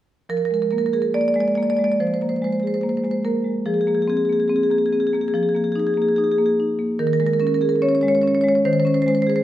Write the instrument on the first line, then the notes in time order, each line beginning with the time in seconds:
marimba
0.29 F3 A#4
0.37 A#4
0.45 A#4
0.51 G#3 A#4
0.62 A#4
0.71 A#3 A#4
0.78 A#4
0.86 A#4
0.93 G#4 A#4
1.02 A#4
1.14 A#3 D5
1.21 D5
1.28 D5
1.34 G#3 D5
1.40 D5
1.48 D5
1.55 A#3 D5
1.63 D5
1.70 D5
1.77 G#3 D5
1.84 D5
1.92 D5
2.00 F3 C5
2.07 C5
2.14 C5
2.21 A#3 C5
2.29 C5
2.36 C5
2.42 G#3 C5
2.52 C5
2.60 G#4 C5
2.67 C5
2.74 C5
2.81 A#3 C5
2.89 C5
2.97 C5
3.04 G#3 C5
3.11 C5
3.25 A#3 A#4
3.44 G#3
3.65 F3 G#4
3.74 G#4
3.81 G#4
3.87 A#3 G#4
3.95 G#4
4.02 G#4
4.08 C4 G#4
4.17 G#4
4.25 G#4
4.29 A#3 G#4
4.40 G#4
4.48 C4 G#4
4.56 G#4
4.63 G#4
4.70 A#3 G#4
4.78 G#4
4.86 G#4
4.92 C4 G#4
5.00 G#4
5.07 G#4
5.13 A#3 G#4
5.21 G#4
5.28 G#4
5.34 F3 G#4
5.43 G#4
5.49 G#4
5.55 A#3 G#4
5.64 G#4
5.72 D#4 G#4
5.79 G#4
5.87 G#4
5.94 A#3 G#4
6.02 G#4
6.08 G#4
6.16 D#4 G#4
6.24 G#4
6.31 G#4
6.38 A#3 G#4
6.46 G#4
6.60 D#4
6.79 A#3
6.99 D#3 A#4
7.07 A#4
7.13 A#4
7.20 G#3 A#4
7.27 A#4
7.33 A#4
7.40 C#4 A#4
7.47 A#4
7.54 A#4
7.61 G#4 A#4
7.69 A#4
7.76 A#4
7.82 C#4 C#5
7.89 C#5
7.95 C#5
8.01 G#3 C#5
8.08 C#5
8.15 C#5
8.22 C#4 C#5
8.28 C#5
8.35 C#5
8.41 G#3 C#5
8.48 C#5
8.55 C#5
8.65 D#3 C5
8.73 C5
8.80 C5
8.85 C#4 C5
8.94 C5
9.02 C5
9.06 G#3 C5
9.15 C5
9.22 C5
9.27 G#4 C5
9.36 C5